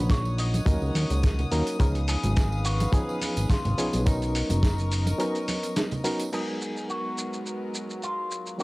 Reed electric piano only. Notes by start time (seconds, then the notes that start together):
Already playing: F#3 A#3 C#4 D#4 A#4
0.66 F#3 A#3 C#4 D#4 A#4
1.51 F#3 A#3 C#4 D#4 A#4
1.79 F3 B3 C#4 D#4 G#4
2.92 F3 B3 C#4 D#4 G#4
3.77 F3 B3 C#4 D#4 G#4
4.05 F#3 B3 C#4 D#4 A#4
5.18 F#3 B3 C#4 D#4 A#4
6.04 F#3 B3 C#4 D#4 A#4
6.32 F#3 G#3 B3 D#4 A#4
8.58 F#3 A#3 C#4 D#4 A#4